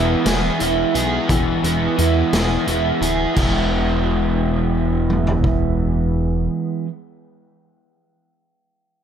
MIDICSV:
0, 0, Header, 1, 5, 480
1, 0, Start_track
1, 0, Key_signature, 4, "major"
1, 0, Tempo, 693642
1, 889, Time_signature, 6, 3, 24, 8
1, 6254, End_track
2, 0, Start_track
2, 0, Title_t, "Overdriven electric guitar"
2, 0, Program_c, 0, 29
2, 0, Note_on_c, 0, 52, 68
2, 0, Note_on_c, 0, 59, 62
2, 178, Note_on_c, 0, 68, 68
2, 645, Note_off_c, 0, 68, 0
2, 653, Note_on_c, 0, 68, 71
2, 893, Note_off_c, 0, 52, 0
2, 1130, Note_off_c, 0, 59, 0
2, 1605, Note_off_c, 0, 68, 0
2, 1613, Note_on_c, 0, 68, 65
2, 2080, Note_off_c, 0, 68, 0
2, 2088, Note_on_c, 0, 68, 61
2, 2328, Note_off_c, 0, 68, 0
2, 6254, End_track
3, 0, Start_track
3, 0, Title_t, "Overdriven electric guitar"
3, 0, Program_c, 1, 29
3, 0, Note_on_c, 1, 52, 58
3, 0, Note_on_c, 1, 56, 63
3, 0, Note_on_c, 1, 59, 70
3, 0, Note_on_c, 1, 64, 73
3, 163, Note_off_c, 1, 64, 0
3, 166, Note_on_c, 1, 64, 68
3, 176, Note_off_c, 1, 59, 0
3, 179, Note_on_c, 1, 59, 54
3, 185, Note_off_c, 1, 56, 0
3, 188, Note_on_c, 1, 56, 57
3, 408, Note_off_c, 1, 52, 0
3, 410, Note_on_c, 1, 52, 68
3, 416, Note_off_c, 1, 56, 0
3, 419, Note_on_c, 1, 56, 62
3, 422, Note_off_c, 1, 59, 0
3, 425, Note_on_c, 1, 59, 60
3, 426, Note_off_c, 1, 64, 0
3, 429, Note_on_c, 1, 64, 68
3, 653, Note_off_c, 1, 64, 0
3, 656, Note_on_c, 1, 64, 59
3, 662, Note_off_c, 1, 59, 0
3, 665, Note_on_c, 1, 59, 53
3, 668, Note_off_c, 1, 56, 0
3, 671, Note_on_c, 1, 56, 48
3, 884, Note_off_c, 1, 52, 0
3, 886, Note_off_c, 1, 56, 0
3, 886, Note_on_c, 1, 52, 74
3, 889, Note_off_c, 1, 59, 0
3, 894, Note_on_c, 1, 56, 81
3, 895, Note_off_c, 1, 64, 0
3, 898, Note_on_c, 1, 59, 82
3, 903, Note_on_c, 1, 64, 82
3, 1119, Note_off_c, 1, 64, 0
3, 1127, Note_on_c, 1, 64, 56
3, 1129, Note_off_c, 1, 59, 0
3, 1138, Note_on_c, 1, 59, 52
3, 1141, Note_off_c, 1, 56, 0
3, 1149, Note_on_c, 1, 56, 47
3, 1355, Note_off_c, 1, 52, 0
3, 1361, Note_off_c, 1, 56, 0
3, 1363, Note_on_c, 1, 52, 53
3, 1369, Note_off_c, 1, 59, 0
3, 1369, Note_on_c, 1, 56, 59
3, 1374, Note_off_c, 1, 64, 0
3, 1377, Note_on_c, 1, 59, 61
3, 1383, Note_on_c, 1, 64, 60
3, 1600, Note_off_c, 1, 64, 0
3, 1608, Note_on_c, 1, 64, 55
3, 1611, Note_off_c, 1, 59, 0
3, 1619, Note_on_c, 1, 59, 56
3, 1620, Note_off_c, 1, 56, 0
3, 1628, Note_on_c, 1, 56, 54
3, 1835, Note_off_c, 1, 52, 0
3, 1843, Note_off_c, 1, 56, 0
3, 1843, Note_on_c, 1, 52, 54
3, 1846, Note_off_c, 1, 59, 0
3, 1851, Note_on_c, 1, 56, 60
3, 1852, Note_off_c, 1, 64, 0
3, 1855, Note_on_c, 1, 59, 64
3, 1861, Note_on_c, 1, 64, 61
3, 2073, Note_off_c, 1, 64, 0
3, 2081, Note_on_c, 1, 64, 53
3, 2083, Note_off_c, 1, 59, 0
3, 2089, Note_off_c, 1, 56, 0
3, 2092, Note_on_c, 1, 59, 50
3, 2097, Note_on_c, 1, 56, 42
3, 2308, Note_off_c, 1, 52, 0
3, 2310, Note_off_c, 1, 64, 0
3, 2315, Note_off_c, 1, 59, 0
3, 2316, Note_on_c, 1, 52, 66
3, 2318, Note_off_c, 1, 56, 0
3, 2325, Note_on_c, 1, 56, 79
3, 2331, Note_on_c, 1, 59, 76
3, 2341, Note_on_c, 1, 64, 83
3, 4738, Note_off_c, 1, 52, 0
3, 4747, Note_off_c, 1, 56, 0
3, 4753, Note_off_c, 1, 59, 0
3, 4763, Note_off_c, 1, 64, 0
3, 6254, End_track
4, 0, Start_track
4, 0, Title_t, "Analog synth bass"
4, 0, Program_c, 2, 38
4, 0, Note_on_c, 2, 28, 84
4, 110, Note_off_c, 2, 28, 0
4, 178, Note_on_c, 2, 28, 92
4, 350, Note_off_c, 2, 28, 0
4, 417, Note_on_c, 2, 28, 84
4, 589, Note_off_c, 2, 28, 0
4, 654, Note_on_c, 2, 35, 84
4, 827, Note_off_c, 2, 35, 0
4, 894, Note_on_c, 2, 28, 85
4, 1067, Note_off_c, 2, 28, 0
4, 1132, Note_on_c, 2, 28, 76
4, 1306, Note_off_c, 2, 28, 0
4, 1373, Note_on_c, 2, 40, 77
4, 1546, Note_off_c, 2, 40, 0
4, 1613, Note_on_c, 2, 28, 79
4, 1786, Note_off_c, 2, 28, 0
4, 1849, Note_on_c, 2, 28, 84
4, 2024, Note_off_c, 2, 28, 0
4, 2084, Note_on_c, 2, 26, 75
4, 2261, Note_off_c, 2, 26, 0
4, 2331, Note_on_c, 2, 28, 89
4, 4491, Note_off_c, 2, 28, 0
4, 6254, End_track
5, 0, Start_track
5, 0, Title_t, "Drums"
5, 178, Note_on_c, 9, 42, 73
5, 181, Note_on_c, 9, 38, 100
5, 247, Note_off_c, 9, 42, 0
5, 250, Note_off_c, 9, 38, 0
5, 416, Note_on_c, 9, 42, 51
5, 486, Note_off_c, 9, 42, 0
5, 658, Note_on_c, 9, 42, 55
5, 727, Note_off_c, 9, 42, 0
5, 895, Note_on_c, 9, 36, 92
5, 897, Note_on_c, 9, 42, 67
5, 965, Note_off_c, 9, 36, 0
5, 966, Note_off_c, 9, 42, 0
5, 1136, Note_on_c, 9, 42, 48
5, 1206, Note_off_c, 9, 42, 0
5, 1373, Note_on_c, 9, 42, 48
5, 1443, Note_off_c, 9, 42, 0
5, 1613, Note_on_c, 9, 42, 62
5, 1615, Note_on_c, 9, 38, 87
5, 1682, Note_off_c, 9, 42, 0
5, 1685, Note_off_c, 9, 38, 0
5, 1851, Note_on_c, 9, 42, 51
5, 1921, Note_off_c, 9, 42, 0
5, 2093, Note_on_c, 9, 42, 51
5, 2162, Note_off_c, 9, 42, 0
5, 2328, Note_on_c, 9, 49, 70
5, 2330, Note_on_c, 9, 36, 83
5, 2398, Note_off_c, 9, 49, 0
5, 2399, Note_off_c, 9, 36, 0
5, 3528, Note_on_c, 9, 47, 45
5, 3597, Note_off_c, 9, 47, 0
5, 3647, Note_on_c, 9, 43, 58
5, 3716, Note_off_c, 9, 43, 0
5, 3765, Note_on_c, 9, 36, 68
5, 3834, Note_off_c, 9, 36, 0
5, 6254, End_track
0, 0, End_of_file